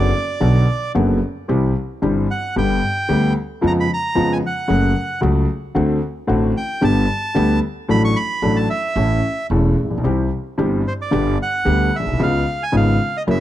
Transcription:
Already playing: F#1 F#4 D5
0.40 B1 B2 D3 F#3 B3 F#4
0.95 F#1 F#2 D3 F#3 B3 F#4
1.48 C2 C3 E3 G3 C4 G4
2.02 G1 G2 E3 G3 C4 G4
2.31 F#5
2.56 G1 G2 D3 G3 B3 G4 G5
3.08 D2 D3 G3 B3 G4
3.61 F2 C#3 F3 G#3 B3 F4
3.67 A#5
3.80 B5
3.94 A#5
4.15 F2 C#3 F3 G#3 B3 F4
4.33 G#5
4.46 F#5
4.68 F#1 F#2 C#3 F#3 A3 F#4
5.21 C#2 C#3 F#3 A3 F#4
5.75 D2 D3 A3 C4 F#4
6.27 A1 A2 D3 A3 C4 F#4
6.57 G5
6.81 G1 G2 D3 G3 B3 G4 A5
7.35 D2 D3 G3 B3 G4
7.88 A1 A2 F#3 A3 D4 A4 B5
8.05 C#6
8.16 B5
8.42 A1 A2 F#3 A3 D4 A4
8.56 A5
8.70 E5
8.96 A1 A2 E3 A3 C#4 A4
9.50 E1 E2 E3 A3 C#4 A4
9.84 A1
9.91 A#1
9.98 B1
10.04 C2 C3 E3 G3 C4 G4
10.58 G1 G2 E3 G3 C4 G4
10.88 C5
11.02 D5
11.11 G1 G2 D3 G3 B3 G4
11.43 F#5
11.65 D2 D3 G3 B3 G4
11.96 A#1 E5
12.00 A#1
12.06 B1
12.13 C2
12.19 C#2 C#3 G#3 B3 F4 F5
12.63 G#5
12.72 G#1 G#2 C#3 G#3 B3 F4
12.77 F5
13.17 D#5
13.27 F#1 F#2 C#3 F#3 A#3 E4 E5

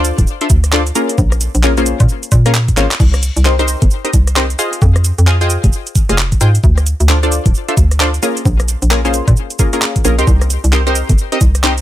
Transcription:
Already playing: D2 D4 F4 A4 C5 D5
0.05 closed hi-hat, shaker
0.18 D1, kick, closed hi-hat, shaker
0.27 shaker
0.41 D4 F4 A4 C5 E5, closed hi-hat
0.50 D2, kick, closed hi-hat, shaker
0.64 cross-stick, closed hi-hat, shaker
0.73 D4 F4 A4 C5 D5, clap, shaker
0.87 closed hi-hat, shaker
0.95 A#3 C#4 F4 G#4 A#4, closed hi-hat, shaker
1.09 closed hi-hat, shaker
1.18 A#1, kick, shaker
1.32 cross-stick, closed hi-hat, shaker
1.41 closed hi-hat, shaker
1.55 A#1, closed hi-hat, shaker
1.63 A#3 C#4 F4 G#4 A#4, clap, shaker
1.77 A#3 C#4 F4 G#4 C5, closed hi-hat, shaker
1.86 closed hi-hat, shaker
2.00 A#2, kick, closed hi-hat, shaker
2.09 shaker
2.23 closed hi-hat, shaker
2.32 A#2, kick, closed hi-hat, shaker
2.46 A#3 C#4 F4 G#4 A#4, cross-stick, closed hi-hat, shaker
2.55 clap, shaker
2.68 kick, closed hi-hat, shaker
2.77 G#1 A#3 C#4 F4 G#4 C5, clap, closed hi-hat, shaker
2.91 clap, closed hi-hat, shaker
3.00 C2, kick, crash, shaker
3.14 cross-stick, closed hi-hat, shaker
3.23 closed hi-hat, shaker
3.37 C2, closed hi-hat, shaker
3.45 C4 D#4 G4 A#4 C5, clap, shaker
3.59 C4 D#4 G4 A#4 C5, closed hi-hat, shaker
3.68 closed hi-hat, shaker
3.82 G1, kick, closed hi-hat, shaker
3.91 shaker
4.05 C4 D#4 G4 A#4 D#5, closed hi-hat
4.13 C2, kick, closed hi-hat, shaker
4.27 cross-stick, closed hi-hat, shaker
4.36 C4 D#4 G4 A#4 C5, clap, shaker
4.50 closed hi-hat, shaker
4.59 F4 G#4 C5 D#5 F5, closed hi-hat, shaker
4.73 closed hi-hat, shaker
4.82 F2, kick, shaker
4.96 cross-stick, closed hi-hat, shaker
5.04 closed hi-hat, shaker
5.18 F2, closed hi-hat, shaker
5.27 F4 G#4 C5 D#5 F5, clap, shaker
5.41 F4 G#4 C5 D#5 G5, closed hi-hat, shaker
5.50 closed hi-hat, shaker
5.64 F1, kick, closed hi-hat, shaker
5.73 shaker
5.87 closed hi-hat, shaker
5.95 kick, closed hi-hat, shaker
6.09 F1 F4 G#4 C5 D#5 F5, cross-stick, closed hi-hat, shaker
6.18 clap, shaker
6.32 kick, closed hi-hat, shaker
6.41 G#2 F4 G#4 C5 D#5 G5, closed hi-hat, shaker
6.55 closed hi-hat, shaker
6.64 D2, kick, shaker
6.78 cross-stick, closed hi-hat, shaker
6.86 closed hi-hat, shaker
7.00 D2, closed hi-hat, shaker
7.09 D4 F4 A4 C5 D5, clap, shaker
7.23 D4 F4 A4 C5 D5, closed hi-hat, shaker
7.32 closed hi-hat, shaker
7.46 D1, kick, closed hi-hat, shaker
7.55 shaker
7.68 D4 F4 A4 C5 E5, closed hi-hat
7.77 D2, kick, closed hi-hat, shaker
7.91 cross-stick, closed hi-hat, shaker
8.00 D4 F4 A4 C5 D5, clap, shaker
8.14 closed hi-hat, shaker
8.23 A#3 C#4 F4 G#4 A#4, closed hi-hat, shaker
8.37 closed hi-hat, shaker
8.45 A#1, kick, shaker
8.60 cross-stick, closed hi-hat, shaker
8.68 closed hi-hat, shaker
8.82 A#1, closed hi-hat, shaker
8.91 A#3 C#4 F4 G#4 A#4, clap, shaker
9.05 A#3 C#4 F4 G#4 C5, closed hi-hat, shaker
9.14 closed hi-hat, shaker
9.28 A#2, kick, closed hi-hat, shaker
9.37 shaker
9.50 closed hi-hat, shaker
9.59 A#3 C#4 F4 G#4 A#4, kick, closed hi-hat, shaker
9.73 A#3 C#4 F4 G#4 A#4, cross-stick, closed hi-hat, shaker
9.82 clap, shaker
9.96 kick, closed hi-hat, shaker
10.05 A#1 A#3 C#4 F4 G#4 A#4, closed hi-hat, shaker
10.18 C#2 C4 D#4 G4 A#4 C5, closed hi-hat, shaker
10.27 C2, kick, shaker
10.42 cross-stick, closed hi-hat, shaker
10.50 closed hi-hat, shaker
10.64 C2, closed hi-hat, shaker
10.73 C4 D#4 G4 A#4 C5, clap, shaker
10.87 C4 D#4 G4 A#4 C5, closed hi-hat, shaker
10.95 closed hi-hat, shaker
11.09 G1, kick, closed hi-hat, shaker
11.18 shaker
11.32 C4 D#4 G4 A#4 D#5, closed hi-hat
11.41 C2, kick, closed hi-hat, shaker
11.55 cross-stick, closed hi-hat, shaker
11.64 C4 D#4 G4 A#4 C5, clap, shaker
11.78 closed hi-hat, shaker

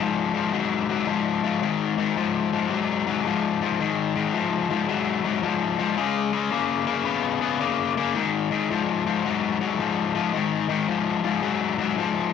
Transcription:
0.00 G#2 F3
0.34 G#2 F3
0.53 G#2 F#3
0.89 G#2 F#3
1.07 G#2 F3
1.43 G#2 F3
1.62 G#2 D#3
1.98 G#2 D#3
2.17 G#2 F3
2.52 G#2 F3
2.70 G#2 F#3
3.07 G#2 F#3
3.25 G#2 F3
3.61 G#2 F3
3.80 G#2 D#3
4.15 G#2 D#3
4.34 G#2 F3
4.70 G#2 F3
4.88 G#2 F#3
5.24 G#2 F#3
5.43 G#2 F3
5.78 G#2 F3
5.97 C#3 G#3
6.33 C#3 G#3
6.51 C#3 A#3
6.87 C#3 A#3
7.05 C#3 B3
7.41 C#3 B3
7.60 C#3 A#3
7.97 C#3 A#3
8.15 G#2 D#3
8.51 G#2 D#3
8.71 G#2 F3
9.06 G#2 F3
9.25 G#2 F#3
9.61 G#2 F#3
9.79 G#2 F3
10.15 G#2 F3
10.33 G#2 D#3
10.69 G#2 D#3
10.88 G#2 F3
11.24 G#2 F3
11.42 G#2 F#3
11.78 G#2 F#3
11.97 G#2 F3

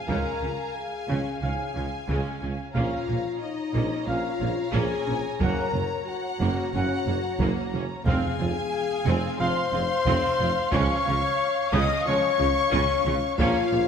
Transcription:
Already playing: F5 G#5
0.07 C#2 G#2 C#3 G#3 C#4 A#4 F5 A#5, taiko
0.41 C#2 C#3 C#4
0.74 G#4 G#5
1.08 C#2 C#3 G#3 C#4
1.41 C#2 G#2 C#3 C#4 G#4 F5 G#5
1.75 C#2 C#3 C#4 F4
2.08 C#2 C#3 G#3 C#4, taiko
2.42 C#2 C#3 C#4
2.74 A#1 A#2 A#3 C#4 F4 C#5 F5 A#5, taiko
3.08 A#1 A#2 C#4
3.42 D#4 D#5
3.74 A#1 A#2 A#3 C#4
4.06 A#1 A#2 C#4 F4 F5
4.41 A#1 A#2 C#4 F4
4.71 A#1 A#2 A#3 C#4 G#4 G#5, taiko
5.06 A#1 A#2 C#4
5.40 F#1 F#2 C#3 A#3 C#4 A#4 F#5 A#5, taiko
5.73 F#1 F#2 A#3 C#4
6.05 F#4 F#5
6.40 F#1 F#2 A#3
6.73 F#1 F#2 C#3 A#3 C#4 F#4 F#5
7.05 F#1 F#2 A#3 F#4
7.39 F#1 F#2 A#3, taiko
7.72 F#1 F#2 A#3 C#4
8.06 F1 F2 F3 C4 G#4 F5 G#5, taiko
8.39 F1 F2 C4 F4
9.06 F1 F2 C4
9.39 F1 F2 F3 C4 F4 C5 F5 C6
9.72 F1 F2 C4 G#4
10.06 F1 F2 C4, taiko
10.39 F1 F2 C4 F4
10.72 C#2 C#3 F3 G#3 C#4 C#5 C#6, taiko
11.06 C#2 C#3 C#4 F4
11.72 C#2 C#3 C#4 D#5 D#6
12.04 C#2 C#3 F3 G#3 C#4 F4 C#5 C#6
12.09 C#6
12.39 C#2 C#3 C#4 G#4
12.71 C#2 C#3 C#4, taiko
13.05 C#2 C#3 C#4 F4
13.37 A#1 A#2 F3 A#3 C#4 F4 C#5 F5, taiko
13.71 A#1 A#2 C#4 F4

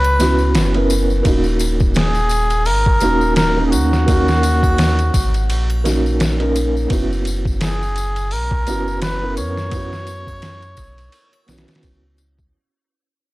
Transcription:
Already playing: C#2 B3 C#4 E4 F#4 B4
0.04 ride, triangle
0.19 C#2 B3 C#4 E4 F#4, snare, ride, tambourine
0.39 tambourine
0.55 F#1, snare, ride, tambourine
0.74 B3 C#4 E4 A#4, ride
0.90 ride, tambourine
1.10 tambourine
1.23 D#1 A#3 C#4 D#4, kick, ride, tambourine
1.28 F#4
1.44 tambourine
1.59 ride, tambourine
1.80 kick, tambourine
1.94 G#4, snare, ride, tambourine
2.15 tambourine
2.29 ride, tambourine
2.50 ride, tambourine
2.65 G#1 A#4, open hi-hat, tambourine
2.86 kick
3.00 D#1 A#3 C#4 D#4 F#4, ride, tambourine
3.21 tambourine
3.36 A#4, snare, ride, tambourine
3.57 A#3 C#4 D#4 A#4
3.66 G#4
3.71 D#2 F#4, ride, tambourine
3.93 snare, tambourine
4.06 A#3 C#4 D#4, kick, ride, tambourine
4.12 F#4
4.28 snare, tambourine
4.43 ride, tambourine
4.63 kick, tambourine, triangle
4.78 snare, ride, tambourine
4.99 ride, tambourine
5.14 G#1, kick, ride, tambourine
5.34 ride, tambourine
5.49 A#1, ride, tambourine
5.70 ride, triangle
5.84 A#3 C#4 D#4 F#4, snare, ride, tambourine
6.06 tambourine
6.20 snare, ride, tambourine
6.40 A#3 C#4 D#4 A#4, ride
6.56 ride, tambourine
6.77 tambourine
6.88 F#1 B3 C#4 E4, kick, ride
6.93 F#4, tambourine
7.13 tambourine
7.25 ride, tambourine
7.45 kick, tambourine
7.61 G#4, snare, ride, tambourine
7.83 tambourine
7.96 ride, tambourine
8.16 ride, tambourine
8.31 B1 A#4, open hi-hat, tambourine
8.51 kick
8.67 F#1 B3 C#4 E4 F#4, ride, tambourine
8.88 tambourine
9.02 B4, snare, ride, tambourine
9.21 B3 C#4 E4 A#4
9.37 F#2 C#5, ride, tambourine
9.58 snare, tambourine
9.71 B3 C#4 E4, kick, ride, tambourine
9.76 F#4
9.93 snare, tambourine
10.07 ride, tambourine
10.27 kick, tambourine, triangle
10.42 snare, ride, tambourine
10.62 ride, tambourine
10.77 B1, kick, ride, tambourine
10.98 ride, tambourine
11.12 ride, tambourine
11.33 ride, triangle
11.47 B1 B3 C#4 E4, snare, ride, tambourine
11.52 F#4
11.58 snare, ride
11.68 snare, ride, tambourine
11.75 snare, ride
11.83 C#2, kick, ride, tambourine
12.18 ride, tambourine
12.39 kick, tambourine

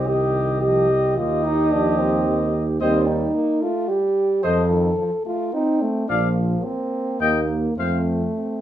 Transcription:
Already playing: C2
0.07 D#3 G4 D#5
0.61 F3 G4 D#5
0.90 G3
1.16 D#2 D#3 F4 G4 D#5
1.44 D#4
1.72 F3 D4
1.98 C4
2.26 D#3
2.80 D#2 G3 C4 C5 D#5
3.07 D#4
3.34 A#3
3.62 A3 F4
3.89 G3 G4
4.43 F2 F3 A4 C5 D#5
4.71 D#3
4.98 F3
5.26 A3 F4
5.53 C4 D#4
5.82 A3
6.08 A#1 F3 D4 D5 F5
6.36 A#3
6.64 C4
7.20 D#2 A#3 D#5 G5
7.77 F2 A3 C4 C5 F5
8.34 C4

